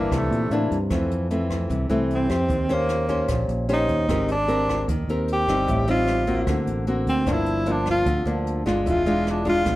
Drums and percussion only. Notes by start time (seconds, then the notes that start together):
0.12 kick, cross-stick, closed hi-hat
0.32 closed hi-hat
0.51 closed hi-hat
0.71 kick, closed hi-hat
0.90 kick, cross-stick, closed hi-hat
1.11 closed hi-hat
1.31 closed hi-hat
1.50 kick, cross-stick, closed hi-hat
1.70 kick, closed hi-hat
1.90 closed hi-hat
2.10 closed hi-hat
2.30 kick, cross-stick, closed hi-hat
2.50 kick, closed hi-hat
2.70 closed hi-hat
2.89 cross-stick, closed hi-hat
3.09 kick, closed hi-hat
3.28 kick, cross-stick, closed hi-hat
3.49 closed hi-hat
3.69 closed hi-hat
3.89 kick, closed hi-hat
4.09 kick, cross-stick, closed hi-hat
4.28 closed hi-hat
4.49 closed hi-hat
4.68 kick, cross-stick, closed hi-hat
4.88 kick, closed hi-hat
5.09 closed hi-hat
5.28 closed hi-hat
5.48 kick, cross-stick, closed hi-hat
5.68 kick, closed hi-hat
5.88 closed hi-hat
6.07 cross-stick, closed hi-hat
6.27 kick, closed hi-hat
6.47 kick, cross-stick, closed hi-hat
6.67 closed hi-hat
6.87 closed hi-hat
7.07 kick, closed hi-hat
7.27 kick, cross-stick, closed hi-hat
7.46 closed hi-hat
7.66 closed hi-hat
7.86 kick, cross-stick, closed hi-hat
8.06 kick, closed hi-hat
8.26 closed hi-hat
8.47 closed hi-hat
8.66 kick, cross-stick, closed hi-hat
8.86 kick, closed hi-hat
9.07 closed hi-hat
9.27 cross-stick, closed hi-hat
9.46 kick, closed hi-hat
9.66 kick, cross-stick, closed hi-hat